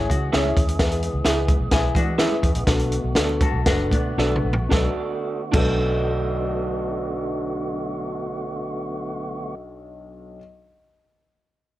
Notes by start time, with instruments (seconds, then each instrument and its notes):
Already playing: tonewheel organ E3 G#3 C#4 G#4, upright piano E4 G#4 C#5
0.09 fingered electric bass C#3, hollow-body jazz guitar F#4, kick, closed hi-hat, high conga
0.32 fingered electric bass C#2, hollow-body jazz guitar C#4 E4, clean electric guitar E4 G#4 C#5 E5, upright piano E4 G#4 C#5, snare, closed hi-hat
0.45 muted conga, high conga
0.57 fingered electric bass D#2, kick, closed hi-hat
0.68 closed hi-hat
0.79 fingered electric bass E2, upright piano E3 E4 G#4 B4, tonewheel organ B3, kick, snare, closed hi-hat, muted conga
0.92 closed hi-hat
1.03 closed hi-hat
1.14 fingered electric bass C#2
1.25 fingered electric bass C#2, upright piano E4 G#4 B4, clean electric guitar E4 G#4 B4 E5, snare, closed hi-hat
1.48 kick, closed hi-hat, high conga, low conga
1.60 fingered electric bass B1
1.71 fingered electric bass B1, upright piano E4 G#4 B4, hollow-body jazz guitar E4 G#4, kick, snare, closed hi-hat, muted conga, high conga, low conga
1.95 fingered electric bass E3, hollow-body jazz guitar D4 F#4, kick, closed hi-hat, high conga
2.18 hollow-body jazz guitar C#4 E4, upright piano E4 G#4 B4, clean electric guitar E4 G#4 B4 E5, snare, closed hi-hat, muted conga
2.32 high conga
2.43 fingered electric bass E2, kick, closed hi-hat
2.55 fingered electric bass A#1, closed hi-hat
2.67 fingered electric bass B1, upright piano B2 D4 A4 B4, tonewheel organ D3 A3 F#4, kick, snare, closed hi-hat
2.79 closed hi-hat, muted conga
2.92 closed hi-hat
3.04 fingered electric bass B1
3.15 fingered electric bass D2, clean electric guitar D4 F#4 A4 D5, upright piano D4 A4 B4, snare, closed hi-hat
3.29 muted conga
3.41 hollow-body jazz guitar F#4 A4, kick, closed hi-hat, high conga, low conga
3.53 fingered electric bass B1
3.66 fingered electric bass F#1, upright piano D4 A4 B4, hollow-body jazz guitar D4 F#4, kick, snare, closed hi-hat, high conga, low conga
3.79 muted conga
3.91 fingered electric bass B2, hollow-body jazz guitar B3 D4, kick, closed hi-hat, high conga
4.18 fingered electric bass B1, upright piano D4 A4 B4, clean electric guitar D4 F#4 A4 D5, snare
4.32 mid tom, high conga
4.45 fingered electric bass A#1
4.53 floor tom
4.69 upright piano B1 D4 A4, fingered electric bass B1, tonewheel organ D3 A3 B3 F#4, clean electric guitar D4 F#4, kick, snare, high conga
4.73 clean electric guitar A4 D5, upright piano B4
5.52 fingered electric bass B1, upright piano B1 D4 A4, clean electric guitar D4 F#4 A4, kick, crash, high conga
5.56 upright piano B4, clean electric guitar D5